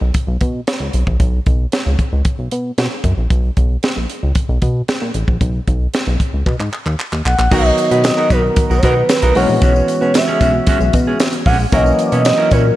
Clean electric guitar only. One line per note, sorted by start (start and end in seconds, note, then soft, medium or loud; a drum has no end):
7.51 7.69 D#4 medium
7.51 7.65 F#4 loud
7.51 7.64 A#4 loud
7.65 muted clean electric guitar stroke medium
7.78 muted clean electric guitar stroke soft
7.91 8.03 D#4 medium
7.91 8.04 F#4 medium
7.91 8.05 B4 medium
8.04 muted clean electric guitar stroke soft
8.17 8.29 D#4 medium
8.17 8.30 F#4 medium
8.17 8.31 A#4 medium
8.30 8.44 D#4 medium
8.30 8.43 F#4 medium
8.30 8.43 B4 medium
8.44 muted clean electric guitar stroke soft
8.57 muted clean electric guitar stroke soft
8.70 8.82 D#4 medium
8.70 8.82 F#4 medium
8.70 8.83 A#4 medium
8.83 9.01 D#4 medium
8.83 8.96 F#4 loud
8.83 8.96 A#4 loud
8.97 muted clean electric guitar stroke soft
9.10 muted clean electric guitar stroke soft
9.22 9.36 D#4 medium
9.22 9.36 F#4 medium
9.22 9.40 A#4 medium
9.36 9.50 G#3 medium
9.36 9.49 C#4 medium
9.36 9.48 F#4 medium
9.49 muted clean electric guitar stroke medium
9.62 9.80 G#3 medium
9.62 9.75 C#4 medium
9.62 9.74 F#4 loud
9.75 muted clean electric guitar stroke medium
9.88 muted clean electric guitar stroke medium
10.01 10.13 G#3 medium
10.01 10.13 C#4 medium
10.01 10.14 F#4 medium
10.15 muted clean electric guitar stroke soft
10.28 10.40 G#3 medium
10.28 10.41 C#4 medium
10.28 10.42 G#4 medium
10.41 10.55 G#3 medium
10.41 10.54 C#4 medium
10.41 10.53 F#4 medium
10.54 muted clean electric guitar stroke soft
10.68 10.85 G#3 medium
10.68 10.80 C#4 medium
10.68 10.79 F#4 loud
10.81 muted clean electric guitar stroke soft
10.94 muted clean electric guitar stroke soft
11.07 11.19 G#3 medium
11.07 11.19 C#4 medium
11.07 11.21 G#4 medium
11.33 muted clean electric guitar stroke soft
11.46 11.64 G#3 loud
11.46 11.59 C#4 loud
11.46 11.59 G#4 loud
11.59 muted clean electric guitar stroke soft
11.72 11.90 C#4 medium
11.72 11.85 E4 medium
11.72 11.85 A#4 loud
11.86 muted clean electric guitar stroke medium
11.99 muted clean electric guitar stroke soft
12.12 12.24 C#4 medium
12.12 12.24 E4 medium
12.12 12.26 C#5 medium
12.25 muted clean electric guitar stroke soft
12.38 12.50 C#4 medium
12.38 12.51 E4 medium
12.38 12.52 A#4 medium
12.51 12.65 C#4 medium
12.51 12.65 E4 medium
12.51 12.65 C#5 medium
12.65 muted clean electric guitar stroke soft